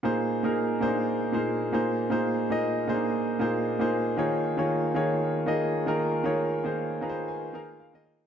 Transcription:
0.03 A#2 A#3 D#4 G#4 C5
0.43 A#2 A#3 D#4 G#4 A#4
0.81 A#2 A#3 D4 G#4 C5
0.88 D#4
1.32 A#2 A#3 D#4 G#4 C5
1.72 A#2 A#3 D#4 G#4 C5
2.10 A#2 A#3 D#4 G#4 C5
2.50 A#2 A#3 D#4 G#4 D#5
2.87 A#2 A#3 D4 G#4 C5
2.95 D#4
3.39 A#2 A#3 D#4 G#4 C5
3.79 A#2 A#3 D#4 G#4 C5
4.17 D#3 A#3 F4 G#4 C#5
4.57 D#3 A#3 F4 G#4 C#5
4.94 D#3 A#3 F4 G#4 C#5
5.46 D#3 A#3 F4 G#4 D#5
5.86 D#3 A#3 F4 G#4 A#4
6.24 D#3 A#3 F4 G#4 C#5
6.64 D#3 A#3 F4 G#4 C5
7.01 D#3 A#3 F4 G#4 B4 A#5
7.09 C5
7.28 G#5
7.53 D#3 A#3 F4 G#4 A#4 F5
7.80 F5
7.93 D#3 A#3 F4 G#4 D#5
8.06 D#5

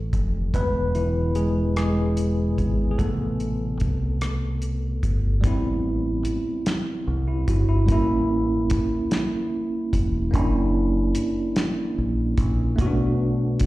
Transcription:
Already playing: E3 G3 A3 A4
0.13 F1, kick, closed hi-hat
0.54 E1 D3 G#3 B3 B4, kick, closed hi-hat
0.95 E3 E4, closed hi-hat
1.35 G#3 G#4, closed hi-hat
1.76 G#3 G#4, cross-stick, closed hi-hat
2.17 closed hi-hat
2.58 G#1 D3 G#3 B3, kick, closed hi-hat
2.91 G#4
2.98 A1 C3 G3 A3 B3 A4, kick, closed hi-hat
3.40 closed hi-hat
3.80 C2, kick, closed hi-hat
4.21 cross-stick, closed hi-hat
4.62 closed hi-hat
5.03 G1, kick, closed hi-hat
5.41 A1 G3 B3 C4, kick, closed hi-hat
5.47 E4
6.25 muted fingered electric bass stroke, closed hi-hat
6.66 snare, closed hi-hat
7.08 C2
7.28 E4
7.48 G1 F#4, kick, closed hi-hat
7.69 E4
7.86 A1 G3 A#3 C#4, kick, closed hi-hat
7.92 E4
8.70 kick, closed hi-hat
9.11 snare, closed hi-hat
9.93 E1, kick, closed hi-hat
10.31 F#1 A#3 C#4 D4, kick, closed hi-hat
10.37 E4
11.15 muted fingered electric bass stroke, closed hi-hat
11.56 snare, closed hi-hat
11.98 A#1
12.38 A#1, kick, closed hi-hat
12.76 B1 A3 B3 C#4, kick, closed hi-hat
12.82 F#4
12.86 D4
13.60 kick, closed hi-hat

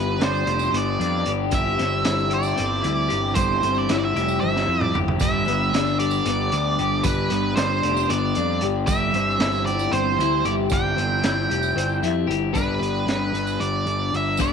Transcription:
Already playing: G1 G3 B3 D4 E4 G4 B4
0.20 G1 D4, snare, closed hi-hat
0.24 C5
0.35 tambourine
0.46 F1 G4, closed hi-hat
0.59 tambourine
0.72 G1 B3 D5, closed hi-hat
1.00 F2 D4, closed hi-hat
1.26 G1 G4, closed hi-hat
1.51 G1 G3 C4 E4 G4 E5, kick, closed hi-hat, tambourine
1.78 G1 C4, snare, closed hi-hat, tambourine
2.05 G1 E4, snare, closed hi-hat
2.18 tambourine
2.30 G4, closed hi-hat
2.34 D5
2.43 tambourine
2.56 G1 C4, closed hi-hat
2.83 D2 E4, closed hi-hat
3.08 G1 G4, closed hi-hat
3.35 G1 G3 C5, kick, closed hi-hat, tambourine
3.62 G1 C4, closed hi-hat, tambourine
3.75 D5, tambourine
3.89 G1 E4, snare, closed hi-hat
3.93 E5
3.99 D5
4.05 E5
4.16 F1 G4, snare, closed hi-hat
4.28 tambourine
4.40 G1 C4 E5, high tom, tambourine
4.56 snare
4.66 F2 E4
4.81 D5, mid tom
4.94 G1 G4, floor tom, tambourine
5.08 floor tom
5.19 G1 G3 D4 E5, kick, closed hi-hat, tambourine
5.44 G1 B3, closed hi-hat, tambourine
5.73 G1 D4, snare, closed hi-hat
5.85 tambourine
5.99 G4 D5, closed hi-hat
6.11 tambourine
6.26 G1 B3, closed hi-hat
6.52 D2 D4, closed hi-hat
6.79 G1 G4, closed hi-hat
7.04 G1 G3 B4, kick, closed hi-hat, tambourine
7.30 G1 B3, closed hi-hat, tambourine
7.56 G1 D4 C5, snare, closed hi-hat
7.71 tambourine
7.83 F1 G4, closed hi-hat
7.97 tambourine
8.09 G1 B3 D5, closed hi-hat
8.35 F2 D4, closed hi-hat
8.61 G1 G4, closed hi-hat
8.85 G1 G3 C4 E4 E5, kick, closed hi-hat, tambourine
8.90 G3
9.14 G1 C4, closed hi-hat, tambourine
9.40 G1 E4, snare, closed hi-hat
9.52 tambourine
9.66 G4 D5, closed hi-hat
9.79 tambourine
9.92 G1 C4 C5, closed hi-hat
10.18 D2 E4, closed hi-hat
10.45 G1 G4 D5, closed hi-hat
10.70 G1 G3 G5, kick, closed hi-hat, tambourine
10.96 G1 C4, closed hi-hat
11.23 G1 E4, snare, closed hi-hat, tambourine
11.50 F1 G4, closed hi-hat
11.63 tambourine
11.76 G1 C4, closed hi-hat
11.89 tambourine
12.03 F2 E4, closed hi-hat, tambourine
12.27 G1 G4, closed hi-hat
12.53 G1 G3 B3 D4 G4 B4, kick, closed hi-hat, tambourine
12.81 G1, closed hi-hat
12.96 tambourine
13.07 G1, snare, closed hi-hat
13.33 G1, closed hi-hat
13.47 tambourine
13.60 G1 D5, closed hi-hat
13.86 G1, closed hi-hat
14.13 G1 E5, closed hi-hat
14.37 G1 G3 B3 D4 G4 D5, kick, closed hi-hat, tambourine

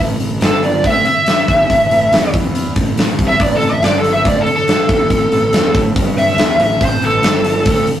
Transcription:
0.00 A1
0.20 A1, open hi-hat
0.41 G1 A4, snare, open hi-hat
0.63 D5, open hi-hat
0.84 D2 E5, kick, open hi-hat
1.05 E5, open hi-hat
1.26 snare, open hi-hat
1.48 D#2, kick, open hi-hat
1.70 A1, kick, open hi-hat
1.90 A1, open hi-hat
2.12 E2, snare, open hi-hat
2.34 E2, kick, open hi-hat
2.55 open hi-hat
2.76 A1, kick, open hi-hat
2.98 snare, open hi-hat
3.19 C2, kick, open hi-hat
3.28 E5
3.39 A1 D5, kick, open hi-hat
3.55 A4
3.60 A1, open hi-hat
3.69 E5
3.81 G1 D5, snare, open hi-hat
3.98 A4
4.04 open hi-hat
4.13 E5
4.25 D2 D5, kick, open hi-hat
4.41 A4
4.47 open hi-hat
4.56 A4, snare
4.68 snare, open hi-hat
4.89 D#2, kick, open hi-hat
5.10 A1, kick, open hi-hat
5.31 A1, open hi-hat
5.53 E2, snare, open hi-hat
5.74 A2, kick, open hi-hat
5.96 G2, kick, open hi-hat
6.18 E5, open hi-hat
6.30 snare
6.36 E2, snare, open hi-hat
6.58 A1 E5, open hi-hat
6.81 A1 C5, kick, open hi-hat
7.01 A1, open hi-hat
7.05 A4
7.22 G1, snare, open hi-hat
7.44 open hi-hat
7.65 D2, kick, open hi-hat
7.87 open hi-hat

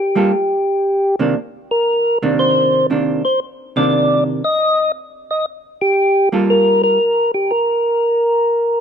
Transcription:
Already playing: G4
0.15 G3 A#3 F4 A4
1.19 C3 D#3 A#3 D4
1.71 A#4
2.22 C3 D#3 A#3 D4
2.39 C5
2.90 C3 D#3 A#3 D4
3.25 C5
3.76 C3 D#3 A#3 D4 D5
4.44 D#5
5.31 D#5
5.81 G4
6.32 G3 A#3 F4 A4
6.50 A#4
6.84 A#4
7.34 G4
7.51 A#4

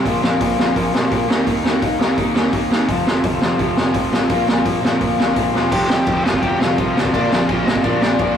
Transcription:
0.03 A#1 A#2 F3 A#3, kick, open hi-hat
0.22 A#1 A#2 F3 A#3, snare
0.40 A#1 A#2 F3 A#3, kick, open hi-hat
0.58 A#1 A#2 F3 A#3, snare
0.75 A#1 A#2 F3 A#3, kick, open hi-hat
0.93 A#1 A#2 F3 A#3, snare
1.11 A#1 A#2 F3 A#3, kick, open hi-hat
1.28 D#2 D#3 A#3 D#4, snare
1.46 D#2 D#3 A#3 D#4, kick, open hi-hat
1.63 D#2 D#3 A#3 D#4, snare
1.81 D#2 D#3 A#3 D#4, kick, open hi-hat
1.99 D#2 D#3 A#3 D#4, snare
2.16 D#2 D#3 A#3 D#4, kick, open hi-hat
2.34 D#2 D#3 A#3 D#4, snare
2.52 D#2 D#3 A#3 D#4, kick, open hi-hat
2.69 D#2 D#3 A#3 D#4, snare
2.87 F1 F2 C3 F3, kick, open hi-hat
3.05 F1 F2 C3 F3, snare
3.23 F1 F2 C3 F3, kick, open hi-hat
3.41 F1 F2 C3 F3, snare
3.58 F1 F2 C3 F3, kick, open hi-hat
3.76 F1 F2 C3 F3, snare
3.94 F1 F2 C3 F3, kick, open hi-hat
4.12 A1 F2 C3 F3, snare
4.29 A#1 A#2 F3 A#3, kick, open hi-hat
4.47 A#1 A#2 F3 A#3, snare
4.64 A#1 A#2 F3 A#3, kick, open hi-hat
4.82 A#1 A#2 F3 A#3, snare
5.00 A#1 A#2 F3 A#3, kick, open hi-hat
5.17 A#1 A#2 F3 A#3, snare
5.34 A#1 A#2 F3 A#3, kick, open hi-hat
5.52 E1 A#2 F3 A#3, snare
5.70 F1 F2 C3 F3 G4 G5, kick, crash
5.88 F2 C3 F3, snare
6.05 F1 F2 C3 F3, kick, crash
6.24 F2 C3 F3 F4 F5, snare
6.34 kick
6.41 F1 F2 C3 F3 G4 G5, kick, crash
6.59 F1 F2 C3 F3 F4 F5, snare
6.77 C2 F2 C3 F3 F4 F5, kick, crash
6.95 F2 C3 F3, snare
7.05 kick
7.13 A#1 A#2 F3 A#3 D4 D5, kick, crash
7.30 A#1 A#2 F3 A#3 D4 D5, snare
7.47 A#1 A#2 F3 A#3 F4 F5, kick, crash
7.65 A#1 A#2 F3 A#3 D#4 D#5, snare
7.75 kick
7.83 A#1 A#2 F3 A#3 D4 D5, kick, crash
8.02 A#2 F3 A#3, snare
8.19 F2 A#2 F3 A#3, kick, crash

